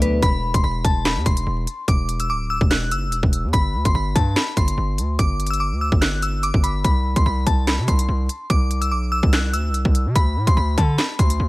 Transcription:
Already playing: D2 D3 F#3 A3 B3 D4 F#4 A4
0.02 F#3 B4, closed hi-hat
0.22 E1 B5, kick, closed hi-hat
0.54 E1 C6, kick, closed hi-hat
0.64 E1 B5
0.84 E1 A5, kick, closed hi-hat
1.05 B5, snare, clap, closed hi-hat
1.16 E2
1.26 E1 C6, kick, closed hi-hat
1.37 closed hi-hat
1.47 E1
1.67 closed hi-hat
1.88 E1 D6, kick, closed hi-hat
2.09 closed hi-hat
2.20 E6, closed hi-hat
2.29 D1 D6
2.50 E6
2.61 E1, kick
2.71 F#6, snare, clap, closed hi-hat
2.91 F#1 E6, closed hi-hat
3.07 E1
3.12 closed hi-hat
3.23 E1, kick
3.33 closed hi-hat
3.44 E2
3.53 G1 B5, kick, closed hi-hat
3.74 D2
3.85 G1 C6, kick, closed hi-hat
3.95 G1 B5
4.15 G2 A5, kick, closed hi-hat
4.36 B5, snare, clap, closed hi-hat
4.57 G1 C6, kick, closed hi-hat
4.68 closed hi-hat
4.78 G1
4.98 D2, closed hi-hat
5.19 G1 D6, kick, closed hi-hat
5.40 closed hi-hat
5.46 E6, closed hi-hat
5.53 closed hi-hat
5.60 D6
5.71 D2
5.81 E6
5.92 G1, kick
6.01 F#6, snare, clap, closed hi-hat
6.22 E6, closed hi-hat
6.43 D6, closed hi-hat
6.54 G1, kick
6.64 B5, closed hi-hat
6.84 C2 B5, kick, closed hi-hat
7.16 C2 C6, kick, closed hi-hat
7.26 C2 B5
7.46 C2 A5, kick, closed hi-hat
7.67 B5, snare, clap, closed hi-hat
7.78 C3
7.88 C2 C6, kick, closed hi-hat
7.99 closed hi-hat
8.09 C2
8.29 closed hi-hat
8.50 C2 D6, kick, closed hi-hat
8.71 closed hi-hat
8.81 E6, closed hi-hat
8.91 B1 D6
9.12 E6
9.23 C2, kick
9.33 F#6, snare, clap, closed hi-hat
9.53 D2 E6, closed hi-hat
9.69 C2
9.74 closed hi-hat
9.85 C2, kick
9.95 closed hi-hat
10.06 C3
10.16 D2 B5, kick, closed hi-hat
10.36 A2
10.47 D2 C6, kick, closed hi-hat
10.57 D2 B5
10.78 D3 A5, kick, closed hi-hat
10.98 B5, snare, clap, closed hi-hat
11.19 D2 C6, kick, closed hi-hat
11.30 closed hi-hat
11.40 D2

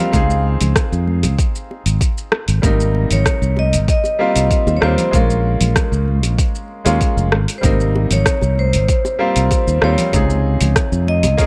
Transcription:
Already playing: G3 A#3 C4 F4 F5
0.12 C#2 C4 D#4 F4 G#4, kick, open hi-hat, high bongo, high conga, shaker
0.30 shaker
0.61 C#2, open hi-hat, high bongo, low conga, shaker
0.76 kick, cross-stick, open hi-hat, shaker
0.92 F2, shaker
1.08 high conga
1.23 C#2, open hi-hat, high bongo, shaker
1.38 kick, open hi-hat, shaker
1.55 shaker
1.71 high bongo
1.86 G#1, open hi-hat, shaker
2.01 kick, open hi-hat, shaker
2.18 shaker
2.32 cross-stick, high bongo
2.48 G#1, open hi-hat, shaker
2.62 G#1 C3 G3 A#3 D#4 A#4, kick, open hi-hat, high conga, shaker
2.80 shaker
2.95 high bongo
3.11 G#1 C#5, open hi-hat, low conga, shaker
3.26 kick, cross-stick, open hi-hat, shaker
3.42 C2, shaker
3.57 D#5, high bongo, high conga
3.73 G#1, open hi-hat, shaker
3.88 D#5, kick, open hi-hat, shaker
4.04 high bongo, shaker
4.19 G3 A#3 C4 F4
4.36 C2, open hi-hat, shaker
4.51 kick, open hi-hat, shaker
4.67 D#2, high bongo, shaker
4.77 C#5
4.81 D#2 G3 A#3 C4 F4 C5, cross-stick
4.98 open hi-hat, low conga, shaker
5.11 A#1 G#3 A#3 C#4 F4 A#4, kick, open hi-hat, high bongo, high conga, shaker
5.30 shaker
5.61 A#1, open hi-hat, low conga, shaker
5.76 kick, cross-stick, open hi-hat, high bongo, shaker
5.92 C#2, shaker
6.08 high conga
6.23 A#1, open hi-hat, high bongo, shaker
6.38 kick, open hi-hat, shaker
6.55 shaker
6.85 D#2 G#3 A#3 C#4 F4, open hi-hat, high bongo, shaker
7.01 kick, open hi-hat, shaker
7.17 F1, shaker
7.32 G#1, cross-stick, high bongo
7.48 open hi-hat, shaker
7.58 G3 C5
7.63 G#1 C3 A#3 D#4 A#4, kick, open hi-hat, high conga, shaker
7.80 shaker
7.95 high bongo
8.11 G#1 C#5, open hi-hat, low conga, shaker
8.26 kick, cross-stick, open hi-hat, shaker
8.42 C2, high bongo, shaker
8.58 C5, high conga
8.73 G#1, open hi-hat, shaker
8.88 kick, open hi-hat, shaker
9.05 high bongo, shaker
9.19 G3 A#3 C4 F4
9.36 C2, open hi-hat, shaker
9.51 kick, open hi-hat, high bongo, shaker
9.67 D#2, shaker
9.81 D#2 G3 A#3 C4 F4 C#5, cross-stick
9.98 open hi-hat, low conga, shaker
10.12 C#2 C3 D#4 F4 G#4, kick, open hi-hat, high bongo, high conga, shaker
10.30 shaker
10.61 C#2, open hi-hat, high bongo, low conga, shaker
10.76 kick, cross-stick, open hi-hat, shaker
10.92 F2, shaker
11.07 D#5, high conga
11.23 C#2, open hi-hat, high bongo, shaker
11.37 A#3 C#4 F4 G#4, kick, open hi-hat, shaker

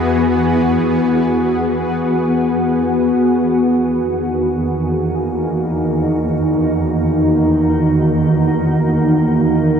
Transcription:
Already playing: E2 E3 B3 F#4 G#4
3.16 E2 D#3
3.69 D#4
3.76 A#3

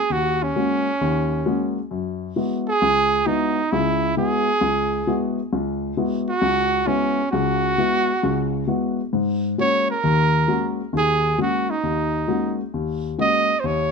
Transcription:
Already playing: G#4
0.10 D#2 F#4
0.43 C#4
0.56 G#3 A#3 C#4 F#4
1.01 D#2 D#3
1.46 G#3 A#3 C#4 F#4
1.91 F#2
2.36 G#3 B3 E4 F#4
2.68 G#4
2.82 C#2
3.26 G#3 B3 D#4 E4 F#4
3.72 C#2 C#3 E4
4.17 G#3 B3 E4 F#4 G#4
4.61 C#2
5.07 G#3 B3 E4 F#4
5.53 C#2
5.97 G#3 B3 E4 F#4
6.29 F#4
6.42 C#2
6.87 G#3 B3 C#4 E4 F#4
7.31 C#2 C#3 F#4
7.78 G#3 B3 E4 F#4
8.23 C#2 C#3
8.67 G#3 B3 E4 F#4
9.13 G#2
9.58 G#3 A#3 C#4 F#4 C#5
9.90 A#4
10.04 D#2 D#3
10.48 G#3 A#3 C#4 F#4
10.93 D#2 D#3
10.98 G#4
11.38 G#3 A#3 C#4 F#4
11.70 D#4
11.83 D#2
12.28 G#3 A#3 C#4 F#4
12.74 D#2
13.18 G#3 A#3 C#4 F#4 D#5
13.60 D#2 C5
13.66 C#5

